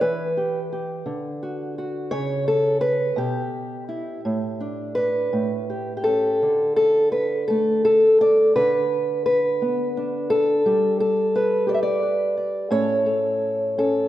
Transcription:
0, 0, Header, 1, 2, 480
1, 0, Start_track
1, 0, Tempo, 701754
1, 17, Time_signature, 6, 3, 24, 8
1, 2897, Tempo, 722022
1, 5777, Tempo, 695249
1, 9585, End_track
2, 0, Start_track
2, 0, Title_t, "Steel-string acoustic guitar"
2, 0, Program_c, 0, 25
2, 7, Note_on_c, 0, 71, 86
2, 11, Note_on_c, 0, 52, 68
2, 255, Note_on_c, 0, 67, 44
2, 488, Note_off_c, 0, 67, 0
2, 496, Note_on_c, 0, 67, 43
2, 704, Note_off_c, 0, 52, 0
2, 707, Note_off_c, 0, 67, 0
2, 723, Note_on_c, 0, 50, 61
2, 976, Note_on_c, 0, 66, 39
2, 1211, Note_off_c, 0, 66, 0
2, 1219, Note_on_c, 0, 66, 44
2, 1427, Note_off_c, 0, 66, 0
2, 1443, Note_on_c, 0, 73, 103
2, 1448, Note_off_c, 0, 50, 0
2, 1449, Note_off_c, 0, 71, 0
2, 1451, Note_on_c, 0, 49, 63
2, 1687, Note_off_c, 0, 73, 0
2, 1695, Note_on_c, 0, 69, 83
2, 1919, Note_off_c, 0, 69, 0
2, 1921, Note_on_c, 0, 71, 94
2, 2140, Note_off_c, 0, 49, 0
2, 2162, Note_on_c, 0, 47, 63
2, 2166, Note_off_c, 0, 71, 0
2, 2175, Note_on_c, 0, 67, 79
2, 2658, Note_on_c, 0, 64, 42
2, 2863, Note_off_c, 0, 47, 0
2, 2870, Note_off_c, 0, 64, 0
2, 2906, Note_on_c, 0, 45, 72
2, 3142, Note_on_c, 0, 62, 42
2, 3372, Note_on_c, 0, 71, 94
2, 3379, Note_off_c, 0, 62, 0
2, 3388, Note_on_c, 0, 62, 46
2, 3595, Note_off_c, 0, 62, 0
2, 3615, Note_off_c, 0, 45, 0
2, 3623, Note_on_c, 0, 45, 57
2, 3861, Note_off_c, 0, 67, 0
2, 3869, Note_on_c, 0, 67, 42
2, 4041, Note_off_c, 0, 67, 0
2, 4049, Note_on_c, 0, 67, 60
2, 4092, Note_off_c, 0, 71, 0
2, 4095, Note_on_c, 0, 69, 84
2, 4114, Note_on_c, 0, 61, 39
2, 4320, Note_off_c, 0, 61, 0
2, 4341, Note_off_c, 0, 67, 0
2, 4346, Note_off_c, 0, 45, 0
2, 4352, Note_on_c, 0, 50, 65
2, 4570, Note_off_c, 0, 69, 0
2, 4578, Note_on_c, 0, 69, 81
2, 4811, Note_off_c, 0, 69, 0
2, 4814, Note_on_c, 0, 71, 84
2, 5050, Note_off_c, 0, 71, 0
2, 5052, Note_on_c, 0, 69, 83
2, 5067, Note_on_c, 0, 57, 58
2, 5291, Note_off_c, 0, 69, 0
2, 5299, Note_on_c, 0, 69, 90
2, 5536, Note_off_c, 0, 69, 0
2, 5539, Note_on_c, 0, 74, 104
2, 5750, Note_off_c, 0, 57, 0
2, 5763, Note_off_c, 0, 50, 0
2, 5767, Note_off_c, 0, 74, 0
2, 5770, Note_on_c, 0, 50, 72
2, 5770, Note_on_c, 0, 71, 99
2, 6246, Note_off_c, 0, 71, 0
2, 6254, Note_on_c, 0, 71, 86
2, 6502, Note_on_c, 0, 59, 55
2, 6746, Note_on_c, 0, 62, 47
2, 6971, Note_off_c, 0, 71, 0
2, 6974, Note_on_c, 0, 69, 96
2, 7187, Note_off_c, 0, 59, 0
2, 7190, Note_off_c, 0, 62, 0
2, 7211, Note_off_c, 0, 50, 0
2, 7220, Note_on_c, 0, 55, 71
2, 7451, Note_off_c, 0, 69, 0
2, 7459, Note_on_c, 0, 69, 81
2, 7702, Note_on_c, 0, 71, 89
2, 7917, Note_on_c, 0, 67, 59
2, 7930, Note_off_c, 0, 69, 0
2, 7933, Note_on_c, 0, 74, 86
2, 7967, Note_off_c, 0, 74, 0
2, 7969, Note_on_c, 0, 76, 75
2, 8018, Note_off_c, 0, 76, 0
2, 8028, Note_on_c, 0, 74, 90
2, 8157, Note_off_c, 0, 71, 0
2, 8166, Note_on_c, 0, 71, 43
2, 8397, Note_off_c, 0, 74, 0
2, 8405, Note_on_c, 0, 74, 49
2, 8610, Note_off_c, 0, 67, 0
2, 8616, Note_off_c, 0, 71, 0
2, 8616, Note_off_c, 0, 74, 0
2, 8634, Note_on_c, 0, 45, 80
2, 8635, Note_off_c, 0, 55, 0
2, 8638, Note_on_c, 0, 61, 47
2, 8641, Note_on_c, 0, 73, 96
2, 8643, Note_on_c, 0, 69, 48
2, 8876, Note_off_c, 0, 69, 0
2, 8879, Note_on_c, 0, 69, 47
2, 9373, Note_off_c, 0, 61, 0
2, 9376, Note_on_c, 0, 61, 55
2, 9377, Note_off_c, 0, 69, 0
2, 9380, Note_on_c, 0, 69, 82
2, 9585, Note_off_c, 0, 45, 0
2, 9585, Note_off_c, 0, 61, 0
2, 9585, Note_off_c, 0, 69, 0
2, 9585, Note_off_c, 0, 73, 0
2, 9585, End_track
0, 0, End_of_file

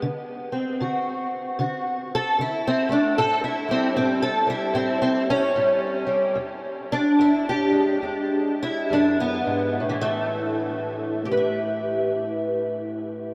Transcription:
0, 0, Header, 1, 2, 480
1, 0, Start_track
1, 0, Tempo, 784314
1, 28, Time_signature, 4, 2, 24, 8
1, 2908, Tempo, 811908
1, 4348, Tempo, 854701
1, 5308, Tempo, 899550
1, 7679, End_track
2, 0, Start_track
2, 0, Title_t, "Steel-string acoustic guitar"
2, 0, Program_c, 0, 25
2, 14, Note_on_c, 0, 50, 75
2, 319, Note_on_c, 0, 60, 46
2, 465, Note_off_c, 0, 50, 0
2, 493, Note_on_c, 0, 50, 71
2, 499, Note_on_c, 0, 66, 46
2, 944, Note_off_c, 0, 50, 0
2, 969, Note_off_c, 0, 66, 0
2, 972, Note_on_c, 0, 50, 76
2, 976, Note_on_c, 0, 66, 49
2, 1301, Note_off_c, 0, 66, 0
2, 1315, Note_on_c, 0, 69, 103
2, 1423, Note_off_c, 0, 50, 0
2, 1461, Note_on_c, 0, 50, 71
2, 1470, Note_off_c, 0, 69, 0
2, 1474, Note_on_c, 0, 64, 81
2, 1620, Note_off_c, 0, 60, 0
2, 1637, Note_on_c, 0, 60, 95
2, 1768, Note_on_c, 0, 57, 52
2, 1784, Note_off_c, 0, 60, 0
2, 1786, Note_on_c, 0, 62, 93
2, 1907, Note_off_c, 0, 50, 0
2, 1924, Note_off_c, 0, 57, 0
2, 1944, Note_off_c, 0, 64, 0
2, 1944, Note_on_c, 0, 45, 77
2, 1946, Note_off_c, 0, 62, 0
2, 1947, Note_on_c, 0, 69, 104
2, 2102, Note_off_c, 0, 69, 0
2, 2105, Note_on_c, 0, 64, 77
2, 2254, Note_on_c, 0, 55, 47
2, 2271, Note_on_c, 0, 60, 99
2, 2389, Note_off_c, 0, 45, 0
2, 2420, Note_off_c, 0, 60, 0
2, 2423, Note_on_c, 0, 45, 75
2, 2427, Note_on_c, 0, 60, 93
2, 2583, Note_off_c, 0, 64, 0
2, 2585, Note_on_c, 0, 69, 104
2, 2587, Note_off_c, 0, 60, 0
2, 2725, Note_off_c, 0, 55, 0
2, 2733, Note_on_c, 0, 55, 44
2, 2747, Note_off_c, 0, 69, 0
2, 2752, Note_on_c, 0, 64, 88
2, 2871, Note_off_c, 0, 45, 0
2, 2899, Note_on_c, 0, 45, 73
2, 2906, Note_on_c, 0, 60, 84
2, 3058, Note_off_c, 0, 60, 0
2, 3065, Note_on_c, 0, 60, 86
2, 3223, Note_off_c, 0, 60, 0
2, 3233, Note_on_c, 0, 61, 101
2, 3341, Note_off_c, 0, 45, 0
2, 3377, Note_off_c, 0, 55, 0
2, 3382, Note_on_c, 0, 45, 70
2, 3384, Note_off_c, 0, 64, 0
2, 3386, Note_on_c, 0, 55, 48
2, 3678, Note_off_c, 0, 55, 0
2, 3685, Note_on_c, 0, 55, 49
2, 3825, Note_off_c, 0, 45, 0
2, 3855, Note_on_c, 0, 40, 73
2, 3862, Note_off_c, 0, 55, 0
2, 3866, Note_off_c, 0, 61, 0
2, 4191, Note_on_c, 0, 62, 96
2, 4310, Note_off_c, 0, 40, 0
2, 4348, Note_on_c, 0, 40, 78
2, 4359, Note_on_c, 0, 64, 86
2, 4511, Note_off_c, 0, 64, 0
2, 4518, Note_on_c, 0, 67, 91
2, 4645, Note_on_c, 0, 56, 48
2, 4787, Note_off_c, 0, 40, 0
2, 4815, Note_off_c, 0, 62, 0
2, 4815, Note_on_c, 0, 40, 75
2, 4822, Note_on_c, 0, 62, 47
2, 5152, Note_off_c, 0, 67, 0
2, 5156, Note_on_c, 0, 64, 96
2, 5269, Note_off_c, 0, 40, 0
2, 5309, Note_off_c, 0, 62, 0
2, 5310, Note_on_c, 0, 42, 59
2, 5325, Note_on_c, 0, 62, 91
2, 5469, Note_off_c, 0, 62, 0
2, 5471, Note_on_c, 0, 59, 94
2, 5607, Note_off_c, 0, 42, 0
2, 5610, Note_on_c, 0, 44, 65
2, 5762, Note_off_c, 0, 56, 0
2, 5786, Note_off_c, 0, 44, 0
2, 5787, Note_off_c, 0, 59, 0
2, 5789, Note_off_c, 0, 64, 0
2, 5790, Note_on_c, 0, 45, 67
2, 5840, Note_on_c, 0, 52, 62
2, 5904, Note_on_c, 0, 57, 94
2, 6549, Note_off_c, 0, 57, 0
2, 6566, Note_on_c, 0, 67, 68
2, 6598, Note_on_c, 0, 71, 66
2, 6630, Note_on_c, 0, 76, 65
2, 7679, Note_off_c, 0, 45, 0
2, 7679, Note_off_c, 0, 52, 0
2, 7679, Note_off_c, 0, 67, 0
2, 7679, Note_off_c, 0, 71, 0
2, 7679, Note_off_c, 0, 76, 0
2, 7679, End_track
0, 0, End_of_file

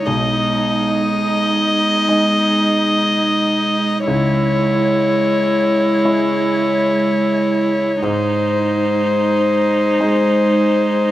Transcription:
0, 0, Header, 1, 6, 480
1, 0, Start_track
1, 0, Tempo, 1001669
1, 34, Time_signature, 4, 2, 24, 8
1, 1954, Tempo, 988468
1, 5370, End_track
2, 0, Start_track
2, 0, Title_t, "Violin"
2, 0, Program_c, 0, 40
2, 29, Note_on_c, 0, 75, 57
2, 1945, Note_off_c, 0, 75, 0
2, 1948, Note_on_c, 0, 73, 58
2, 3874, Note_on_c, 0, 72, 57
2, 3881, Note_off_c, 0, 73, 0
2, 5370, Note_off_c, 0, 72, 0
2, 5370, End_track
3, 0, Start_track
3, 0, Title_t, "Ambient pad"
3, 0, Program_c, 1, 92
3, 35, Note_on_c, 1, 63, 65
3, 35, Note_on_c, 1, 75, 61
3, 36, Note_on_c, 1, 56, 67
3, 1935, Note_off_c, 1, 56, 0
3, 1953, Note_off_c, 1, 63, 0
3, 1954, Note_off_c, 1, 75, 0
3, 1954, Note_on_c, 1, 64, 67
3, 1956, Note_on_c, 1, 56, 62
3, 1958, Note_on_c, 1, 73, 65
3, 3856, Note_off_c, 1, 56, 0
3, 3875, Note_off_c, 1, 64, 0
3, 3876, Note_off_c, 1, 73, 0
3, 3877, Note_on_c, 1, 56, 63
3, 3877, Note_on_c, 1, 72, 65
3, 3878, Note_on_c, 1, 63, 64
3, 5370, Note_off_c, 1, 56, 0
3, 5370, Note_off_c, 1, 63, 0
3, 5370, Note_off_c, 1, 72, 0
3, 5370, End_track
4, 0, Start_track
4, 0, Title_t, "Viola"
4, 0, Program_c, 2, 41
4, 35, Note_on_c, 2, 63, 60
4, 1934, Note_off_c, 2, 63, 0
4, 1953, Note_on_c, 2, 64, 68
4, 3855, Note_off_c, 2, 64, 0
4, 3873, Note_on_c, 2, 63, 67
4, 5370, Note_off_c, 2, 63, 0
4, 5370, End_track
5, 0, Start_track
5, 0, Title_t, "Grand piano"
5, 0, Program_c, 3, 0
5, 0, Control_c, 3, 64, 127
5, 33, Note_on_c, 3, 35, 63
5, 41, Control_c, 3, 64, 0
5, 133, Control_c, 3, 64, 127
5, 999, Note_on_c, 3, 56, 49
5, 1000, Note_on_c, 3, 63, 52
5, 1003, Note_on_c, 3, 75, 54
5, 1933, Note_off_c, 3, 35, 0
5, 1935, Note_off_c, 3, 56, 0
5, 1936, Note_off_c, 3, 63, 0
5, 1937, Note_off_c, 3, 75, 0
5, 1953, Note_on_c, 3, 37, 66
5, 1962, Control_c, 3, 64, 0
5, 2039, Control_c, 3, 64, 127
5, 2911, Note_on_c, 3, 56, 52
5, 2911, Note_on_c, 3, 64, 55
5, 2914, Note_on_c, 3, 73, 59
5, 3854, Note_off_c, 3, 56, 0
5, 3854, Note_off_c, 3, 64, 0
5, 3855, Note_off_c, 3, 37, 0
5, 3856, Note_off_c, 3, 73, 0
5, 3870, Note_on_c, 3, 44, 61
5, 3881, Control_c, 3, 64, 0
5, 3961, Control_c, 3, 64, 127
5, 4830, Note_on_c, 3, 56, 51
5, 4833, Note_on_c, 3, 63, 50
5, 4834, Note_on_c, 3, 72, 59
5, 5370, Note_off_c, 3, 44, 0
5, 5370, Note_off_c, 3, 56, 0
5, 5370, Note_off_c, 3, 63, 0
5, 5370, Note_off_c, 3, 72, 0
5, 5370, End_track
6, 0, Start_track
6, 0, Title_t, "Cello"
6, 0, Program_c, 4, 42
6, 36, Note_on_c, 4, 56, 67
6, 1935, Note_off_c, 4, 56, 0
6, 1948, Note_on_c, 4, 56, 74
6, 3852, Note_off_c, 4, 56, 0
6, 3875, Note_on_c, 4, 56, 68
6, 5370, Note_off_c, 4, 56, 0
6, 5370, End_track
0, 0, End_of_file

